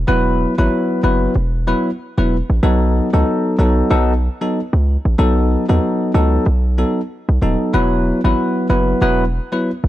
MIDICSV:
0, 0, Header, 1, 3, 480
1, 0, Start_track
1, 0, Tempo, 638298
1, 59, Time_signature, 4, 2, 24, 8
1, 7431, End_track
2, 0, Start_track
2, 0, Title_t, "Tine electric piano"
2, 0, Program_c, 0, 4
2, 56, Note_on_c, 0, 54, 86
2, 56, Note_on_c, 0, 59, 82
2, 58, Note_on_c, 0, 64, 79
2, 60, Note_on_c, 0, 71, 102
2, 404, Note_off_c, 0, 54, 0
2, 404, Note_off_c, 0, 59, 0
2, 405, Note_off_c, 0, 64, 0
2, 406, Note_off_c, 0, 71, 0
2, 437, Note_on_c, 0, 54, 77
2, 438, Note_on_c, 0, 59, 72
2, 439, Note_on_c, 0, 64, 72
2, 441, Note_on_c, 0, 71, 88
2, 754, Note_off_c, 0, 54, 0
2, 755, Note_off_c, 0, 59, 0
2, 756, Note_off_c, 0, 64, 0
2, 756, Note_off_c, 0, 71, 0
2, 775, Note_on_c, 0, 54, 78
2, 777, Note_on_c, 0, 59, 69
2, 779, Note_on_c, 0, 64, 70
2, 780, Note_on_c, 0, 71, 81
2, 1001, Note_off_c, 0, 54, 0
2, 1002, Note_off_c, 0, 59, 0
2, 1003, Note_off_c, 0, 64, 0
2, 1004, Note_off_c, 0, 71, 0
2, 1258, Note_on_c, 0, 54, 79
2, 1260, Note_on_c, 0, 59, 70
2, 1261, Note_on_c, 0, 64, 72
2, 1262, Note_on_c, 0, 71, 84
2, 1422, Note_off_c, 0, 54, 0
2, 1423, Note_off_c, 0, 59, 0
2, 1424, Note_off_c, 0, 64, 0
2, 1424, Note_off_c, 0, 71, 0
2, 1635, Note_on_c, 0, 54, 70
2, 1638, Note_on_c, 0, 59, 66
2, 1639, Note_on_c, 0, 64, 67
2, 1641, Note_on_c, 0, 71, 80
2, 1771, Note_off_c, 0, 54, 0
2, 1773, Note_off_c, 0, 59, 0
2, 1773, Note_off_c, 0, 64, 0
2, 1774, Note_off_c, 0, 71, 0
2, 1975, Note_on_c, 0, 54, 93
2, 1977, Note_on_c, 0, 59, 80
2, 1978, Note_on_c, 0, 63, 80
2, 1980, Note_on_c, 0, 69, 95
2, 2323, Note_off_c, 0, 54, 0
2, 2324, Note_off_c, 0, 59, 0
2, 2325, Note_off_c, 0, 63, 0
2, 2325, Note_off_c, 0, 69, 0
2, 2356, Note_on_c, 0, 54, 76
2, 2358, Note_on_c, 0, 59, 69
2, 2359, Note_on_c, 0, 63, 74
2, 2360, Note_on_c, 0, 69, 89
2, 2674, Note_off_c, 0, 54, 0
2, 2675, Note_off_c, 0, 59, 0
2, 2675, Note_off_c, 0, 63, 0
2, 2676, Note_off_c, 0, 69, 0
2, 2697, Note_on_c, 0, 54, 77
2, 2698, Note_on_c, 0, 59, 72
2, 2699, Note_on_c, 0, 63, 72
2, 2701, Note_on_c, 0, 69, 86
2, 2922, Note_off_c, 0, 54, 0
2, 2922, Note_off_c, 0, 59, 0
2, 2923, Note_off_c, 0, 63, 0
2, 2924, Note_off_c, 0, 69, 0
2, 2937, Note_on_c, 0, 54, 88
2, 2938, Note_on_c, 0, 59, 83
2, 2939, Note_on_c, 0, 63, 77
2, 2940, Note_on_c, 0, 69, 98
2, 3102, Note_off_c, 0, 54, 0
2, 3102, Note_off_c, 0, 59, 0
2, 3103, Note_off_c, 0, 63, 0
2, 3103, Note_off_c, 0, 69, 0
2, 3318, Note_on_c, 0, 54, 74
2, 3319, Note_on_c, 0, 59, 67
2, 3320, Note_on_c, 0, 63, 69
2, 3321, Note_on_c, 0, 69, 82
2, 3453, Note_off_c, 0, 54, 0
2, 3453, Note_off_c, 0, 59, 0
2, 3454, Note_off_c, 0, 63, 0
2, 3454, Note_off_c, 0, 69, 0
2, 3897, Note_on_c, 0, 54, 85
2, 3899, Note_on_c, 0, 59, 83
2, 3900, Note_on_c, 0, 63, 78
2, 3901, Note_on_c, 0, 69, 99
2, 4244, Note_off_c, 0, 54, 0
2, 4245, Note_off_c, 0, 59, 0
2, 4246, Note_off_c, 0, 63, 0
2, 4246, Note_off_c, 0, 69, 0
2, 4276, Note_on_c, 0, 54, 77
2, 4277, Note_on_c, 0, 59, 72
2, 4279, Note_on_c, 0, 63, 74
2, 4280, Note_on_c, 0, 69, 85
2, 4594, Note_off_c, 0, 54, 0
2, 4595, Note_off_c, 0, 59, 0
2, 4596, Note_off_c, 0, 63, 0
2, 4596, Note_off_c, 0, 69, 0
2, 4618, Note_on_c, 0, 54, 80
2, 4620, Note_on_c, 0, 59, 73
2, 4621, Note_on_c, 0, 63, 70
2, 4623, Note_on_c, 0, 69, 88
2, 4843, Note_off_c, 0, 54, 0
2, 4844, Note_off_c, 0, 59, 0
2, 4844, Note_off_c, 0, 63, 0
2, 4845, Note_off_c, 0, 69, 0
2, 5096, Note_on_c, 0, 54, 74
2, 5098, Note_on_c, 0, 59, 69
2, 5100, Note_on_c, 0, 63, 67
2, 5101, Note_on_c, 0, 69, 83
2, 5261, Note_off_c, 0, 54, 0
2, 5262, Note_off_c, 0, 59, 0
2, 5263, Note_off_c, 0, 63, 0
2, 5264, Note_off_c, 0, 69, 0
2, 5578, Note_on_c, 0, 54, 69
2, 5580, Note_on_c, 0, 59, 66
2, 5581, Note_on_c, 0, 63, 70
2, 5584, Note_on_c, 0, 69, 82
2, 5803, Note_off_c, 0, 54, 0
2, 5804, Note_off_c, 0, 59, 0
2, 5804, Note_off_c, 0, 63, 0
2, 5806, Note_off_c, 0, 69, 0
2, 5817, Note_on_c, 0, 54, 92
2, 5819, Note_on_c, 0, 59, 81
2, 5819, Note_on_c, 0, 64, 82
2, 5821, Note_on_c, 0, 71, 93
2, 6164, Note_off_c, 0, 54, 0
2, 6165, Note_off_c, 0, 59, 0
2, 6165, Note_off_c, 0, 64, 0
2, 6166, Note_off_c, 0, 71, 0
2, 6199, Note_on_c, 0, 54, 80
2, 6200, Note_on_c, 0, 59, 73
2, 6201, Note_on_c, 0, 64, 71
2, 6202, Note_on_c, 0, 71, 85
2, 6515, Note_off_c, 0, 54, 0
2, 6516, Note_off_c, 0, 59, 0
2, 6517, Note_off_c, 0, 64, 0
2, 6517, Note_off_c, 0, 71, 0
2, 6538, Note_on_c, 0, 54, 73
2, 6539, Note_on_c, 0, 59, 74
2, 6541, Note_on_c, 0, 64, 71
2, 6542, Note_on_c, 0, 71, 87
2, 6763, Note_off_c, 0, 54, 0
2, 6763, Note_off_c, 0, 59, 0
2, 6764, Note_off_c, 0, 64, 0
2, 6765, Note_off_c, 0, 71, 0
2, 6778, Note_on_c, 0, 54, 89
2, 6780, Note_on_c, 0, 59, 80
2, 6781, Note_on_c, 0, 64, 79
2, 6783, Note_on_c, 0, 71, 99
2, 6942, Note_off_c, 0, 54, 0
2, 6943, Note_off_c, 0, 59, 0
2, 6944, Note_off_c, 0, 64, 0
2, 6945, Note_off_c, 0, 71, 0
2, 7159, Note_on_c, 0, 54, 75
2, 7160, Note_on_c, 0, 59, 65
2, 7162, Note_on_c, 0, 64, 67
2, 7163, Note_on_c, 0, 71, 82
2, 7293, Note_off_c, 0, 54, 0
2, 7294, Note_off_c, 0, 59, 0
2, 7294, Note_off_c, 0, 64, 0
2, 7295, Note_off_c, 0, 71, 0
2, 7431, End_track
3, 0, Start_track
3, 0, Title_t, "808-style bass"
3, 0, Program_c, 1, 38
3, 62, Note_on_c, 1, 28, 106
3, 346, Note_off_c, 1, 28, 0
3, 440, Note_on_c, 1, 32, 87
3, 515, Note_off_c, 1, 32, 0
3, 779, Note_on_c, 1, 30, 84
3, 959, Note_off_c, 1, 30, 0
3, 1019, Note_on_c, 1, 28, 110
3, 1304, Note_off_c, 1, 28, 0
3, 1638, Note_on_c, 1, 28, 90
3, 1819, Note_off_c, 1, 28, 0
3, 1877, Note_on_c, 1, 33, 86
3, 1953, Note_off_c, 1, 33, 0
3, 1977, Note_on_c, 1, 35, 116
3, 2263, Note_off_c, 1, 35, 0
3, 2358, Note_on_c, 1, 37, 95
3, 2434, Note_off_c, 1, 37, 0
3, 2697, Note_on_c, 1, 35, 90
3, 2878, Note_off_c, 1, 35, 0
3, 2939, Note_on_c, 1, 35, 106
3, 3224, Note_off_c, 1, 35, 0
3, 3558, Note_on_c, 1, 37, 91
3, 3738, Note_off_c, 1, 37, 0
3, 3799, Note_on_c, 1, 33, 85
3, 3875, Note_off_c, 1, 33, 0
3, 3901, Note_on_c, 1, 35, 107
3, 4185, Note_off_c, 1, 35, 0
3, 4281, Note_on_c, 1, 39, 89
3, 4356, Note_off_c, 1, 39, 0
3, 4620, Note_on_c, 1, 37, 97
3, 4800, Note_off_c, 1, 37, 0
3, 4859, Note_on_c, 1, 35, 110
3, 5144, Note_off_c, 1, 35, 0
3, 5479, Note_on_c, 1, 35, 91
3, 5555, Note_off_c, 1, 35, 0
3, 5580, Note_on_c, 1, 27, 91
3, 5684, Note_off_c, 1, 27, 0
3, 5821, Note_on_c, 1, 28, 107
3, 6105, Note_off_c, 1, 28, 0
3, 6198, Note_on_c, 1, 32, 95
3, 6274, Note_off_c, 1, 32, 0
3, 6540, Note_on_c, 1, 30, 89
3, 6720, Note_off_c, 1, 30, 0
3, 6780, Note_on_c, 1, 28, 102
3, 7064, Note_off_c, 1, 28, 0
3, 7398, Note_on_c, 1, 30, 91
3, 7431, Note_off_c, 1, 30, 0
3, 7431, End_track
0, 0, End_of_file